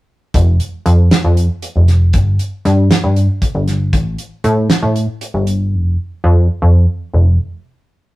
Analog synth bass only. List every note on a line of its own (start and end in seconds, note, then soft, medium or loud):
0.34 0.58 F1 medium
0.86 1.09 F2 medium
1.24 1.48 F2 medium
1.76 2.15 F1 medium
2.14 2.37 G1 medium
2.65 2.89 G2 medium
3.04 3.27 G2 medium
3.55 3.94 G1 medium
3.93 4.17 A1 medium
4.44 4.68 A2 loud
4.83 5.06 A2 medium
5.34 5.74 G1 medium
5.73 5.96 F1 medium
6.24 6.47 F2 medium
6.62 6.86 F2 medium
7.13 7.37 F1 medium